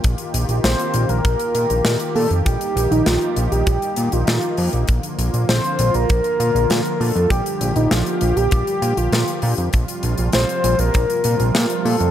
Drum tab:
HH |xxxxxxxxxxxxxxox|xxxxxxxxxxxxxxox|xxxxxxxxxxxxxxox|xxxxxxxxxxxxxxox|
SD |----o-------o---|----o-------o---|----o-------o---|----o-------o---|
BD |o-------o-------|o-------o-------|o-------o-------|o-------o-------|

HH |xxxxxxxxxxxxxxox|
SD |----o-------o---|
BD |o-------o-------|